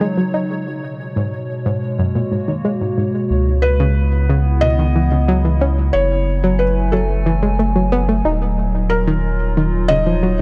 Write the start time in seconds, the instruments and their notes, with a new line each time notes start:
Already playing: ambient pad C#3 F#3 D#4 F4, synth texture C#5
0.01 synth arpeggio sound G#3
0.17 synth arpeggio sound F#3
0.34 synth arpeggio sound D#4
0.67 ambient pad B2
1.16 synth arpeggio sound G#2, ambient pad G#3
1.66 synth arpeggio sound G#2
1.79 ambient pad A#3 F#4
1.99 synth arpeggio sound F#2
2.15 synth arpeggio sound A#2
2.32 synth arpeggio sound G#2
2.48 synth arpeggio sound D#3
2.65 synth arpeggio sound G#3
2.81 synth arpeggio sound G#2
2.98 synth arpeggio sound G#2
3.31 sub bass C#2, ambient pad C#3
3.60 ambient pad E4, felt piano B4
3.80 synth arpeggio sound C#3, ambient pad B3
4.30 synth arpeggio sound C#3
4.61 synth arpeggio sound B2, felt piano D#5
4.79 synth arpeggio sound D#3
4.95 synth arpeggio sound E3
5.12 synth arpeggio sound C#3
5.28 synth arpeggio sound F#3
5.45 synth arpeggio sound E3
5.61 synth arpeggio sound C#4
5.93 sub bass F#1, ambient pad F#3, felt piano C#5
6.25 ambient pad G#5
6.30 ambient pad A3
6.44 synth arpeggio sound F#3
6.59 felt piano B4
6.92 synth arpeggio sound F#3, felt piano A4
7.26 synth arpeggio sound E3
7.43 synth arpeggio sound G#3
7.59 synth arpeggio sound A3
7.76 synth arpeggio sound F#3
7.92 synth arpeggio sound B3
8.09 synth arpeggio sound A3
8.25 sub bass D#1, synth arpeggio sound D#4
8.59 ambient pad F4
8.79 ambient pad D#4
8.90 felt piano A#4
9.08 synth arpeggio sound D#3
9.57 synth arpeggio sound D#3, ambient pad C#5
9.88 synth arpeggio sound C#3, felt piano D#5
10.07 synth arpeggio sound F3
10.23 synth arpeggio sound F#3